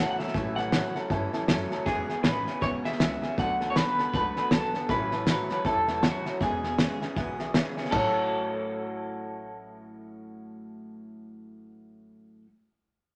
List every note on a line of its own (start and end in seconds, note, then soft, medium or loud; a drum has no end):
0.00 0.18 A2 medium
0.00 0.19 A2 medium
0.00 0.19 E3 medium
0.00 0.18 F#3 loud
0.00 0.20 F#3 medium
0.00 0.19 A3 medium
0.00 0.18 C#4 medium
0.00 0.17 A4 medium
0.00 0.10 C#5 loud
0.00 0.10 E5 medium
0.00 0.10 A5 loud
0.11 0.18 F#5 medium
0.18 0.33 A2 medium
0.18 0.33 F#3 loud
0.18 0.34 F#3 soft
0.18 0.34 A3 soft
0.18 0.34 C#4 medium
0.18 0.34 A4 medium
0.18 0.28 C#5 medium
0.18 0.56 E5 medium
0.18 0.28 E5 medium
0.18 0.29 A5 medium
0.18 muted upright bass stroke medium
0.18 snare soft
0.27 snare soft
0.34 0.77 A1 loud
0.34 0.57 A2 medium
0.34 0.55 A2 loud
0.34 0.57 E3 medium
0.34 0.55 E3 loud
0.34 0.58 F#3 loud
0.34 0.58 A3 loud
0.34 0.57 C#4 loud
0.34 0.56 A4 medium
0.34 0.48 C#5 loud
0.34 0.48 E5 medium
0.34 0.48 A5 loud
0.34 kick loud
0.34 snare soft
0.56 0.71 A2 medium
0.56 0.71 E3 medium
0.56 0.73 F#3 soft
0.56 0.73 A3 medium
0.56 0.73 C#4 soft
0.56 0.72 A4 medium
0.56 0.66 C#5 medium
0.56 0.67 E5 medium
0.56 1.06 F#5 medium
0.56 0.67 A5 medium
0.56 snare soft
0.72 0.93 A2 medium
0.72 0.95 A2 medium
0.72 0.96 E3 loud
0.72 0.93 F#3 medium
0.72 0.96 F#3 medium
0.72 0.96 A3 medium
0.72 0.95 C#4 medium
0.72 0.94 A4 medium
0.72 0.86 C#5 medium
0.72 0.86 E5 medium
0.72 0.86 A5 medium
0.72 snare loud
0.72 hi-hat pedal medium
0.95 1.09 A2 medium
0.95 1.09 F#3 medium
0.95 1.10 F#3 soft
0.95 1.11 A3 soft
0.95 1.11 C#4 medium
0.95 1.11 A4 medium
0.95 1.04 C#5 medium
0.95 1.04 E5 medium
0.95 1.04 A5 medium
0.95 muted upright bass stroke medium
0.95 snare soft
1.10 1.30 G1 medium
1.10 1.31 A2 medium
1.10 1.31 E3 medium
1.10 1.33 F#3 medium
1.10 1.34 A3 medium
1.10 1.32 C#4 medium
1.10 1.32 A4 medium
1.10 1.24 C#5 loud
1.10 1.24 E5 loud
1.10 1.24 A5 loud
1.10 kick loud
1.10 snare soft
1.33 1.46 A2 medium
1.33 1.47 E3 medium
1.33 1.48 F#3 medium
1.33 1.48 A3 medium
1.33 1.49 C#4 medium
1.33 1.48 A4 medium
1.33 1.42 C#5 medium
1.33 1.42 E5 medium
1.33 1.42 A5 loud
1.33 snare soft
1.47 1.68 F#1 medium
1.47 1.69 A2 medium
1.47 1.71 A2 medium
1.47 1.71 E3 medium
1.47 1.69 F#3 loud
1.47 1.72 F#3 medium
1.47 1.72 A3 medium
1.47 1.70 C#4 medium
1.47 1.69 A4 loud
1.47 1.62 C#5 loud
1.47 1.62 E5 loud
1.47 1.62 A5 loud
1.47 snare loud
1.47 hi-hat pedal medium
1.70 1.84 A2 medium
1.70 1.85 F#3 medium
1.70 1.86 F#3 medium
1.70 1.87 A3 medium
1.70 1.86 C#4 medium
1.70 1.86 A4 medium
1.70 1.80 C#5 medium
1.70 1.80 E5 medium
1.70 1.80 A5 loud
1.70 muted upright bass stroke medium
1.70 snare soft
1.85 2.02 E1 loud
1.85 2.06 E2 medium
1.85 2.07 B2 medium
1.85 2.09 E3 medium
1.85 2.09 G#3 medium
1.85 2.09 B3 loud
1.85 2.08 C#4 medium
1.85 2.23 G#4 medium
1.85 2.07 G#4 loud
1.85 2.00 B4 medium
1.85 2.00 E5 medium
1.85 2.00 G#5 loud
1.85 kick loud
1.85 snare soft
2.08 2.23 E2 medium
2.08 2.23 B2 medium
2.08 2.23 B3 soft
2.08 2.24 C#4 soft
2.08 2.24 G#4 medium
2.08 2.18 B4 medium
2.08 2.18 E5 medium
2.08 2.18 G#5 medium
2.08 snare soft
2.23 2.43 A1 medium
2.23 2.45 E2 medium
2.23 2.45 C#3 medium
2.23 2.47 E3 medium
2.23 2.47 G#3 medium
2.23 2.47 B3 loud
2.23 2.46 C#4 medium
2.23 2.45 G#4 medium
2.23 2.63 B4 loud
2.23 2.38 B4 medium
2.23 2.38 E5 medium
2.23 2.38 G#5 medium
2.23 snare loud
2.23 hi-hat pedal medium
2.46 2.60 E2 medium
2.46 2.60 C#3 medium
2.46 2.61 B3 soft
2.46 2.62 C#4 medium
2.46 2.62 G#4 medium
2.46 2.56 B4 medium
2.46 2.56 E5 medium
2.46 2.56 G#5 medium
2.46 snare soft
2.61 2.81 B1 medium
2.61 2.82 E2 medium
2.61 2.83 B2 loud
2.61 2.84 G#3 medium
2.61 2.85 B3 medium
2.61 2.85 C#4 medium
2.61 2.83 G#4 medium
2.61 2.76 B4 loud
2.61 2.68 C#5 loud
2.61 2.76 E5 medium
2.61 2.76 G#5 loud
2.61 kick loud
2.61 snare soft
2.84 2.98 E2 medium
2.84 2.99 B2 medium
2.84 3.00 B3 soft
2.84 3.00 C#4 soft
2.84 3.00 G#4 medium
2.84 2.94 B4 medium
2.84 2.94 E5 medium
2.84 3.39 E5 loud
2.84 2.94 G#5 medium
2.84 muted upright bass stroke medium
2.84 snare soft
2.93 snare soft
2.99 3.19 C#2 medium
2.99 3.20 E2 loud
2.99 3.20 C#3 medium
2.99 3.23 E3 medium
2.99 3.23 G#3 medium
2.99 3.23 B3 medium
2.99 3.22 C#4 medium
2.99 3.21 G#4 medium
2.99 3.14 B4 loud
2.99 3.14 E5 loud
2.99 3.14 G#5 loud
2.99 snare loud
2.99 hi-hat pedal medium
3.22 3.36 E2 medium
3.22 3.36 C#3 medium
3.22 3.37 B3 soft
3.22 3.38 C#4 medium
3.22 3.38 G#4 medium
3.22 3.32 B4 medium
3.22 3.32 E5 medium
3.22 3.32 G#5 medium
3.22 muted upright bass stroke medium
3.22 snare soft
3.37 3.80 D2 loud
3.37 3.58 D3 medium
3.37 3.60 D3 medium
3.37 3.61 F#3 medium
3.37 3.58 A3 loud
3.37 3.61 B3 medium
3.37 3.60 F#4 medium
3.37 3.59 A4 medium
3.37 3.51 D5 loud
3.37 3.52 F#5 medium
3.37 3.70 F#5 loud
3.37 3.52 A5 loud
3.37 kick loud
3.37 snare soft
3.60 3.74 D3 medium
3.60 3.74 A3 medium
3.60 3.76 B3 soft
3.60 3.76 F#4 medium
3.60 3.75 A4 medium
3.60 3.70 D5 medium
3.60 3.70 A5 medium
3.60 snare soft
3.70 3.76 C#5 medium
3.75 3.96 D3 medium
3.75 3.98 D3 medium
3.75 3.99 F#3 medium
3.75 3.96 B3 loud
3.75 3.99 B3 medium
3.75 3.98 F#4 medium
3.75 3.97 A4 loud
3.75 4.13 B4 loud
3.75 3.89 D5 medium
3.75 3.89 F#5 medium
3.75 snare loud
3.75 hi-hat pedal medium
3.98 4.12 D3 medium
3.98 4.12 B3 medium
3.98 4.14 B3 soft
3.98 4.14 F#4 medium
3.98 4.13 A4 medium
3.98 4.08 D5 medium
3.98 4.08 F#5 medium
3.98 4.08 A5 medium
3.98 muted upright bass stroke medium
3.98 snare soft
4.13 4.33 C#2 medium
4.13 4.34 D3 medium
4.13 4.36 F#3 medium
4.13 4.34 A3 medium
4.13 4.37 B3 medium
4.13 4.37 F#4 medium
4.13 4.35 A4 medium
4.13 4.53 B4 loud
4.13 4.28 D5 loud
4.13 4.28 F#5 medium
4.13 4.28 A5 loud
4.13 kick loud
4.13 snare soft
4.36 4.50 D3 medium
4.36 4.50 A3 medium
4.36 4.52 B3 medium
4.36 4.52 F#4 medium
4.36 4.52 A4 medium
4.36 4.46 D5 medium
4.36 4.46 F#5 medium
4.36 4.46 A5 medium
4.36 snare soft
4.51 4.71 B1 medium
4.51 4.72 D3 medium
4.51 4.75 D3 medium
4.51 4.75 F#3 medium
4.51 4.72 B3 loud
4.51 4.75 B3 medium
4.51 4.75 F#4 medium
4.51 4.91 A4 medium
4.51 4.73 A4 medium
4.51 4.66 D5 medium
4.51 4.66 F#5 medium
4.51 4.66 A5 loud
4.51 snare loud
4.51 hi-hat pedal medium
4.74 4.88 D3 medium
4.74 4.88 B3 medium
4.74 4.90 B3 soft
4.74 4.90 F#4 medium
4.74 4.90 A4 medium
4.74 4.84 D5 medium
4.74 4.84 F#5 medium
4.74 4.84 A5 medium
4.74 muted upright bass stroke medium
4.74 snare soft
4.89 5.32 A1 loud
4.89 5.12 A2 medium
4.89 5.10 A2 medium
4.89 5.10 E3 loud
4.89 5.12 E3 medium
4.89 5.13 F#3 medium
4.89 5.13 A3 loud
4.89 5.12 C#4 loud
4.89 5.11 F#4 medium
4.89 5.26 B4 loud
4.89 5.03 C#5 loud
4.89 5.03 E5 medium
4.89 5.03 A5 loud
4.89 kick loud
4.89 snare soft
5.12 5.26 A2 medium
5.12 5.26 E3 medium
5.12 5.26 F#3 soft
5.12 5.27 A3 medium
5.12 5.27 C#4 medium
5.12 5.27 F#4 medium
5.12 5.21 C#5 medium
5.12 5.21 E5 medium
5.12 5.21 A5 medium
5.12 snare soft
5.27 5.50 A2 medium
5.27 5.48 A2 medium
5.27 5.50 E3 medium
5.27 5.50 F#3 medium
5.27 5.48 F#3 loud
5.27 5.50 A3 loud
5.27 5.49 C#4 medium
5.27 5.49 F#4 medium
5.27 5.63 B4 loud
5.27 5.41 C#5 medium
5.27 5.41 E5 medium
5.27 5.42 A5 medium
5.27 snare loud
5.27 hi-hat pedal medium
5.50 5.64 A2 medium
5.50 5.64 F#3 medium
5.50 5.64 F#3 soft
5.50 5.65 A3 soft
5.50 5.66 C#4 medium
5.50 5.65 F#4 medium
5.50 5.59 C#5 medium
5.50 5.59 E5 medium
5.50 5.60 A5 medium
5.50 muted upright bass stroke medium
5.50 snare soft
5.64 6.08 E1 medium
5.64 5.86 A2 medium
5.64 5.86 E3 medium
5.64 5.88 F#3 medium
5.64 5.88 A3 medium
5.64 5.87 C#4 medium
5.64 5.86 F#4 medium
5.64 6.05 A4 loud
5.64 5.79 C#5 medium
5.64 5.79 E5 medium
5.64 5.79 A5 loud
5.64 kick loud
5.64 snare soft
5.87 6.02 A2 medium
5.87 6.02 E3 medium
5.87 6.03 F#3 soft
5.87 6.03 A3 medium
5.87 6.03 C#4 medium
5.87 6.03 F#4 medium
5.87 5.97 C#5 medium
5.87 5.97 E5 medium
5.87 5.97 A5 medium
5.87 snare soft
6.03 6.23 A2 medium
6.03 6.26 A2 medium
6.03 6.26 E3 medium
6.03 6.24 F#3 loud
6.03 6.26 F#3 medium
6.03 6.26 A3 medium
6.03 6.25 C#4 medium
6.03 6.42 F#4 medium
6.03 6.24 F#4 medium
6.03 6.17 C#5 medium
6.03 6.17 E5 loud
6.03 6.17 A5 loud
6.03 snare loud
6.03 hi-hat pedal medium
6.25 6.39 A2 medium
6.25 6.40 F#3 medium
6.25 6.41 F#3 soft
6.25 6.41 A3 soft
6.25 6.41 C#4 medium
6.25 6.41 F#4 medium
6.25 6.35 C#5 medium
6.25 6.35 E5 medium
6.25 6.35 A5 medium
6.25 muted upright bass stroke medium
6.25 snare soft
6.40 6.83 E1 medium
6.40 6.61 E2 loud
6.40 6.61 B2 medium
6.40 6.63 E3 medium
6.40 6.64 G#3 medium
6.40 6.64 B3 loud
6.40 6.64 C#4 medium
6.40 7.51 G#4 medium
6.40 6.62 G#4 loud
6.40 6.54 B4 medium
6.40 6.54 E5 medium
6.40 kick loud
6.40 snare soft
6.63 6.77 E2 medium
6.63 6.77 B2 medium
6.63 6.79 C#4 medium
6.63 6.79 G#4 medium
6.63 6.73 B4 medium
6.63 6.73 E5 medium
6.63 6.73 G#5 medium
6.63 snare soft
6.67 6.78 B3 soft
6.78 6.99 E2 medium
6.78 6.99 C#3 loud
6.78 7.01 E3 medium
6.78 7.02 G#3 medium
6.78 7.02 B3 medium
6.78 7.02 C#4 medium
6.78 7.00 G#4 medium
6.78 6.92 B4 medium
6.78 6.92 E5 medium
6.78 snare loud
6.78 hi-hat pedal medium
7.01 7.15 E2 medium
7.01 7.15 C#3 medium
7.01 7.16 B3 medium
7.01 7.17 C#4 medium
7.01 7.17 G#4 medium
7.01 7.10 B4 medium
7.01 7.11 E5 medium
7.01 7.11 G#5 loud
7.01 muted upright bass stroke medium
7.01 snare soft
7.16 7.59 B1 medium
7.16 7.37 E2 medium
7.16 7.37 B2 medium
7.16 7.39 G#3 medium
7.16 7.40 B3 medium
7.16 7.40 C#4 medium
7.16 7.38 G#4 medium
7.16 7.30 B4 loud
7.16 7.31 E5 loud
7.16 7.31 G#5 loud
7.16 kick loud
7.16 snare soft
7.39 7.53 E2 medium
7.39 7.53 B2 medium
7.39 7.55 B3 medium
7.39 7.56 C#4 medium
7.39 7.55 G#4 medium
7.39 7.49 B4 loud
7.39 7.49 E5 medium
7.39 7.49 G#5 loud
7.39 snare soft
7.54 7.75 E2 medium
7.54 7.75 C#3 loud
7.54 7.77 E3 medium
7.54 7.78 G#3 medium
7.54 7.78 B3 medium
7.54 7.78 C#4 loud
7.54 7.76 G#4 loud
7.54 7.68 B4 loud
7.54 7.68 E5 loud
7.54 7.68 G#5 loud
7.54 snare loud
7.54 hi-hat pedal medium
7.77 7.91 E2 medium
7.77 7.91 C#3 medium
7.77 7.94 B3 medium
7.77 7.94 C#4 medium
7.77 7.93 G#4 medium
7.77 7.86 B4 medium
7.77 7.86 E5 medium
7.77 7.87 G#5 loud
7.77 muted upright bass stroke medium
7.77 snare soft
7.85 snare soft
7.90 12.42 A1 loud
7.90 12.45 A2 medium
7.90 12.46 E3 medium
7.90 12.46 A3 medium
7.90 12.46 E4 medium
7.90 12.47 F#4 loud
7.90 12.42 A4 medium
7.90 12.41 C#5 medium
7.90 12.42 E5 medium
7.90 kick loud
7.90 floor tom loud
7.90 crash medium
7.94 12.47 F#3 medium
7.94 12.48 A3 medium
7.94 12.49 C#4 medium
7.94 12.48 C#5 loud
7.94 12.43 A5 medium
7.99 12.50 F#4 loud